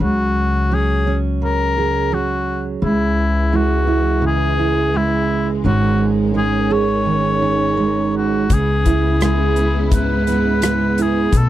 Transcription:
Already playing: F#3
0.00 C#2 C#3 F#4
0.71 F#3 C#4 G#4
1.07 C#4
1.42 C#3 A#4
1.78 G#4
2.12 F#3 F#4
2.82 C#2 C#3 E3 G#3 E4
3.53 G#3 E4 F#4
3.87 E4
4.22 C#3
4.26 G#4
4.59 E4
4.94 G#3 E4
5.64 G#1 G#2 D#3 G#3 C#4 D#4 F#4
6.34 G#3 D#4 G#4
6.70 G#4 C#5
7.06 D#3
7.42 D#4
7.77 G#3
8.17 F#4
8.49 C#2 C#3 G#3 B3 E4, kick, closed hi-hat
8.53 G#4
8.85 E4, kick, closed hi-hat
9.21 G#3 G#4, cross-stick, closed hi-hat
9.56 closed hi-hat
9.91 G#2 B4, kick, closed hi-hat
10.27 B3, closed hi-hat
10.62 G#3, cross-stick, closed hi-hat
10.98 E4, closed hi-hat
11.02 G#4
11.32 B1 B2 A3 D#4, kick, closed hi-hat
11.37 A4

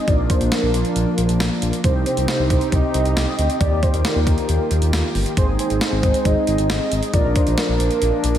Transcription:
0.08 A#1 F3 A#3 D4 F4 D5, kick, closed hi-hat
0.19 A#1
0.30 C5, kick, closed hi-hat
0.41 A#1, closed hi-hat
0.52 A#4, snare, closed hi-hat
0.63 A#1
0.74 A#1, closed hi-hat
0.85 closed hi-hat
0.96 A#1, closed hi-hat
1.18 A#1, closed hi-hat
1.29 A#1, closed hi-hat
1.40 A#1, snare, closed hi-hat
1.62 A#1, closed hi-hat
1.73 closed hi-hat
1.84 C2 C3 C4 D#4 G4 C5, kick, closed hi-hat
1.95 C2
2.06 C5, closed hi-hat
2.17 C2, closed hi-hat
2.28 snare, closed hi-hat
2.39 C2
2.50 C2, kick, closed hi-hat
2.61 closed hi-hat
2.72 C2 D#5, kick, closed hi-hat
2.94 C2, closed hi-hat
3.05 C2, closed hi-hat
3.17 C2, snare, closed hi-hat
3.39 D2, closed hi-hat
3.50 closed hi-hat
3.60 D#2 D#3 A#3 D#4 F4 G4 D5, kick, closed hi-hat
3.72 D#2
3.82 C5, kick, closed hi-hat
3.94 D#2, closed hi-hat
4.05 A#4, snare, closed hi-hat
4.16 D#2
4.27 D#2, kick, closed hi-hat
4.38 closed hi-hat
4.49 D#2, closed hi-hat
4.71 D#2, closed hi-hat
4.82 D#2, closed hi-hat
4.93 D#2, snare, closed hi-hat
5.15 G1, open hi-hat
5.26 closed hi-hat
5.37 G#1 G#3 C4 D#4 G#4 C5, kick, closed hi-hat
5.48 G#1
5.59 C5, closed hi-hat
5.70 G#1, closed hi-hat
5.81 snare, closed hi-hat
5.92 G#1
6.03 G#1, kick, closed hi-hat
6.14 closed hi-hat
6.25 G#1 D#5, kick, closed hi-hat
6.47 G#1, closed hi-hat
6.58 G#1, closed hi-hat
6.70 G#1, snare, closed hi-hat
6.92 G#1, closed hi-hat
7.03 closed hi-hat
7.14 A#1 F3 A#3 D4 F4 A#4 D5, kick, closed hi-hat
7.25 A#1
7.36 C5, kick, closed hi-hat
7.47 A#1, closed hi-hat
7.58 A#4, snare, closed hi-hat
7.69 A#1
7.80 A#1, closed hi-hat
7.91 closed hi-hat
8.02 A#1, closed hi-hat
8.24 A#1, closed hi-hat
8.35 A#1, closed hi-hat

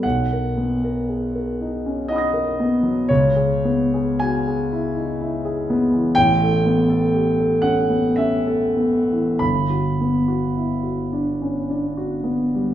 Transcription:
0.03 B1 F#5
0.32 A#4
0.57 B3
0.84 A#4
1.09 G#4
1.35 A#4
1.61 D#4
1.86 C#4
2.08 D#4 D#5 F#5 B5
2.16 D#6 A#6
2.33 A#4
2.60 B3
2.83 F#3
3.08 C#2 C#5
3.36 G#4
3.65 B3
3.94 G#4
4.20 F#4 G#5
4.47 G#4
4.72 E4
4.96 D#4
5.21 E4
5.45 G#4
5.70 B3
5.93 E3
6.15 A1 G5
6.43 A4
6.66 B3
6.89 A4
7.14 G4
7.40 A4
7.62 C#4 F#5
7.90 B3
8.16 C#4 E5
8.47 A4
8.77 B3
9.11 E3
9.39 G1 B5
9.70 F#4
10.01 B3
10.28 F#4
10.55 E4
10.83 F#4
11.12 D4
11.42 C#4
11.70 D4
11.97 F#4
12.23 B3
12.54 G3

